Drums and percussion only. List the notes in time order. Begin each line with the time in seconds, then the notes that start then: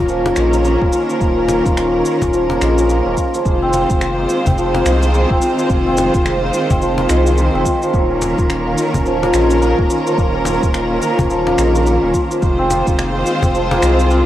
0.08 shaker
0.26 cajon slap
0.36 finger snap, shaker
0.53 shaker
0.65 shaker
0.82 kick
0.93 shaker
1.10 shaker
1.21 kick, shaker
1.49 cajon slap, shaker
1.66 kick, shaker
1.77 finger snap, shaker
2.05 shaker
2.22 cajon bass, kick, cajon slap, shaker
2.33 shaker
2.50 cajon slap
2.62 finger snap, shaker
2.78 shaker
2.90 shaker
3.17 kick, shaker
3.34 shaker
3.45 kick, shaker
3.73 cajon slap, shaker
3.90 kick, shaker
4.01 finger snap, shaker
4.29 shaker
4.46 kick, cajon bass, cajon slap, shaker
4.58 shaker
4.74 cajon slap
4.86 finger snap, shaker
5.03 shaker
5.14 shaker
5.30 kick
5.42 shaker
5.59 shaker
5.70 kick, shaker
5.97 cajon slap, shaker
6.14 kick, shaker
6.26 finger snap, shaker
6.53 shaker
6.70 kick, cajon bass, cajon slap, shaker
6.82 shaker
6.98 cajon slap
7.09 finger snap, shaker
7.26 shaker
7.38 shaker
7.55 cajon slap
7.66 kick, shaker
7.82 shaker
7.94 kick, shaker
8.22 cajon slap, shaker
8.38 kick, shaker
8.50 finger snap, shaker
8.78 shaker
8.94 cajon bass, kick, cajon slap, shaker
9.06 shaker
9.23 cajon slap
9.34 finger snap, shaker
9.50 shaker
9.62 shaker
9.79 kick
9.90 shaker
10.07 shaker
10.18 kick, shaker
10.45 cajon slap, shaker
10.63 kick, shaker
10.74 finger snap, shaker
11.02 shaker
11.19 kick, cajon bass, cajon slap, shaker
11.30 shaker
11.47 cajon slap
11.58 finger snap, shaker
11.75 shaker
11.86 shaker
12.14 kick, shaker
12.31 shaker
12.42 kick, shaker
12.70 cajon slap, shaker
12.87 kick, shaker
12.99 finger snap, shaker
13.26 shaker
13.43 cajon bass, kick, cajon slap, shaker
13.55 shaker
13.71 cajon slap
13.82 finger snap, shaker
13.99 shaker
14.10 shaker